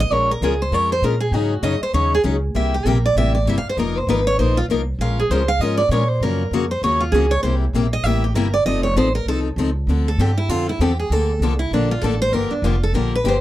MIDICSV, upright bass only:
0, 0, Header, 1, 3, 480
1, 0, Start_track
1, 0, Key_signature, -5, "minor"
1, 0, Tempo, 305344
1, 178, Time_signature, 4, 2, 24, 8
1, 15538, Key_signature, -1, "minor"
1, 21076, End_track
2, 0, Start_track
2, 0, Title_t, "Upright bass"
2, 0, Program_c, 0, 32
2, 163, Note_on_c, 0, 34, 73
2, 634, Note_off_c, 0, 34, 0
2, 645, Note_on_c, 0, 37, 79
2, 1109, Note_off_c, 0, 37, 0
2, 1118, Note_on_c, 0, 41, 74
2, 1591, Note_off_c, 0, 41, 0
2, 1602, Note_on_c, 0, 46, 90
2, 2054, Note_off_c, 0, 46, 0
2, 2064, Note_on_c, 0, 44, 77
2, 2544, Note_off_c, 0, 44, 0
2, 2553, Note_on_c, 0, 42, 86
2, 2829, Note_off_c, 0, 42, 0
2, 3040, Note_on_c, 0, 39, 76
2, 3512, Note_off_c, 0, 39, 0
2, 3524, Note_on_c, 0, 37, 97
2, 3994, Note_off_c, 0, 37, 0
2, 4007, Note_on_c, 0, 36, 81
2, 4470, Note_off_c, 0, 36, 0
2, 4479, Note_on_c, 0, 34, 81
2, 4952, Note_off_c, 0, 34, 0
2, 4961, Note_on_c, 0, 33, 84
2, 5422, Note_off_c, 0, 33, 0
2, 5431, Note_on_c, 0, 31, 89
2, 5708, Note_off_c, 0, 31, 0
2, 5924, Note_on_c, 0, 29, 86
2, 6387, Note_off_c, 0, 29, 0
2, 6397, Note_on_c, 0, 32, 82
2, 6872, Note_off_c, 0, 32, 0
2, 6891, Note_on_c, 0, 34, 80
2, 7356, Note_off_c, 0, 34, 0
2, 7365, Note_on_c, 0, 36, 87
2, 7828, Note_off_c, 0, 36, 0
2, 7838, Note_on_c, 0, 34, 78
2, 8313, Note_off_c, 0, 34, 0
2, 8324, Note_on_c, 0, 37, 84
2, 8777, Note_off_c, 0, 37, 0
2, 8787, Note_on_c, 0, 44, 84
2, 9248, Note_off_c, 0, 44, 0
2, 9258, Note_on_c, 0, 46, 90
2, 9743, Note_off_c, 0, 46, 0
2, 9754, Note_on_c, 0, 42, 84
2, 10226, Note_off_c, 0, 42, 0
2, 10236, Note_on_c, 0, 41, 88
2, 10705, Note_off_c, 0, 41, 0
2, 10715, Note_on_c, 0, 39, 81
2, 11186, Note_off_c, 0, 39, 0
2, 11196, Note_on_c, 0, 37, 92
2, 11672, Note_off_c, 0, 37, 0
2, 11679, Note_on_c, 0, 36, 82
2, 12148, Note_off_c, 0, 36, 0
2, 12157, Note_on_c, 0, 34, 86
2, 12619, Note_off_c, 0, 34, 0
2, 12628, Note_on_c, 0, 33, 78
2, 13105, Note_off_c, 0, 33, 0
2, 13114, Note_on_c, 0, 31, 90
2, 13591, Note_off_c, 0, 31, 0
2, 13607, Note_on_c, 0, 29, 82
2, 14069, Note_off_c, 0, 29, 0
2, 14078, Note_on_c, 0, 33, 86
2, 14541, Note_off_c, 0, 33, 0
2, 14550, Note_on_c, 0, 36, 78
2, 15023, Note_off_c, 0, 36, 0
2, 15032, Note_on_c, 0, 37, 98
2, 15504, Note_off_c, 0, 37, 0
2, 15513, Note_on_c, 0, 38, 83
2, 15991, Note_off_c, 0, 38, 0
2, 16002, Note_on_c, 0, 43, 83
2, 16475, Note_off_c, 0, 43, 0
2, 16483, Note_on_c, 0, 41, 77
2, 16956, Note_off_c, 0, 41, 0
2, 16964, Note_on_c, 0, 40, 85
2, 17437, Note_off_c, 0, 40, 0
2, 17447, Note_on_c, 0, 38, 82
2, 17904, Note_off_c, 0, 38, 0
2, 17914, Note_on_c, 0, 36, 85
2, 18391, Note_off_c, 0, 36, 0
2, 18407, Note_on_c, 0, 34, 78
2, 18879, Note_off_c, 0, 34, 0
2, 18896, Note_on_c, 0, 33, 89
2, 19363, Note_off_c, 0, 33, 0
2, 19370, Note_on_c, 0, 31, 78
2, 19640, Note_off_c, 0, 31, 0
2, 19841, Note_on_c, 0, 29, 94
2, 20316, Note_off_c, 0, 29, 0
2, 20330, Note_on_c, 0, 34, 79
2, 20801, Note_off_c, 0, 34, 0
2, 20814, Note_on_c, 0, 31, 94
2, 21076, Note_off_c, 0, 31, 0
2, 21076, End_track
3, 0, Start_track
3, 0, Title_t, "Muted upright bass strokes"
3, 2844, Note_on_c, 9, 29, 37
3, 3001, Note_off_c, 9, 29, 0
3, 5721, Note_on_c, 9, 29, 39
3, 5879, Note_off_c, 9, 29, 0
3, 19671, Note_on_c, 9, 29, 40
3, 19828, Note_off_c, 9, 29, 0
3, 21076, End_track
0, 0, End_of_file